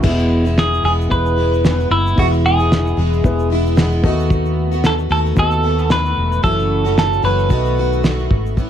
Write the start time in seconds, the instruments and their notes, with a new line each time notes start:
0.02 fingered electric bass E1, steel-string acoustic guitar E2 B2 E3 G#3 B3 E4, upright piano B3 E4 G#4 E5, kick, crash
0.19 shaker
0.45 steel-string acoustic guitar E3 G#3 B3 E4, shaker
0.58 clean electric guitar G#4, snare, shaker
0.74 shaker
0.83 fingered electric bass E1, steel-string acoustic guitar E3 G#3 B3 E4, clean electric guitar G#4
1.01 shaker
1.09 fingered electric bass E1, upright piano B3 E4 G#4 B4, clean electric guitar B4, kick, shaker
1.26 shaker
1.36 steel-string acoustic guitar E3 G#3 B3 E4
1.54 shaker
1.64 steel-string acoustic guitar E3 G#3 B3 E4, snare, shaker
1.80 shaker
1.90 fingered electric bass F#1, clean electric guitar E4
2.07 shaker
2.15 fingered electric bass E1, steel-string acoustic guitar E2 B2 E3 G#3 B3, upright piano B3 E4 G#4 E5, clean electric guitar F#4, kick, shaker
2.19 steel-string acoustic guitar E4
2.33 shaker
2.46 clean electric guitar G#4, shaker
2.58 steel-string acoustic guitar E3 G#3 B3 E4, shaker
2.72 snare, shaker
2.87 shaker
2.97 fingered electric bass E1, steel-string acoustic guitar E3 G#3 B3 E4
3.13 shaker
3.24 fingered electric bass E1, upright piano B3 E4 G#4 B4, kick, shaker
3.39 shaker
3.50 steel-string acoustic guitar E3 G#3 B3 E4
3.66 shaker
3.76 steel-string acoustic guitar E3 G#3 B3 E4, snare, shaker
3.92 shaker
4.03 fingered electric bass D#2, steel-string acoustic guitar D#3 A3 B3 F#4, upright piano B3 F#4 A4 D#5, kick
4.19 shaker
4.30 kick, shaker
4.45 shaker
4.72 steel-string acoustic guitar A3 B3 F#4, shaker
4.84 clean electric guitar A4, snare, shaker
4.99 shaker
5.09 fingered electric bass D#2, steel-string acoustic guitar D#3 A3 B3 F#4, clean electric guitar A4
5.26 shaker
5.35 fingered electric bass D#2, upright piano B3 F#4 A4 D#5, kick, shaker
5.39 clean electric guitar A4
5.51 shaker
5.61 steel-string acoustic guitar D#3 A3 B3 F#4
5.79 shaker
5.90 steel-string acoustic guitar D#3 A3 B3 F#4, clean electric guitar B4, snare, shaker
6.06 shaker
6.17 fingered electric bass E1
6.32 shaker
6.42 fingered electric bass F#1, steel-string acoustic guitar F#2 C#3 E3 A3 C#4 F#4, upright piano C#4 F#4 A4 E5, clean electric guitar A4, kick, shaker
6.59 shaker
6.85 steel-string acoustic guitar E3 A3 C#4 F#4, shaker
6.98 clean electric guitar A4, snare, shaker
7.13 shaker
7.22 fingered electric bass F#1, steel-string acoustic guitar E3 A3 C#4 F#4, clean electric guitar B4
7.39 shaker
7.49 fingered electric bass B1, steel-string acoustic guitar B2 D#3 A3 B3 F#4, upright piano B3 F#4 A4 D#5, kick, shaker
7.65 shaker
7.77 steel-string acoustic guitar D#3 A3 B3 F#4
7.93 shaker
8.03 steel-string acoustic guitar D#3 A3 B3 F#4, snare, shaker
8.19 shaker
8.31 fingered electric bass G#1, kick
8.46 shaker
8.57 steel-string acoustic guitar A2 E3 B3 C#4 E4, kick, shaker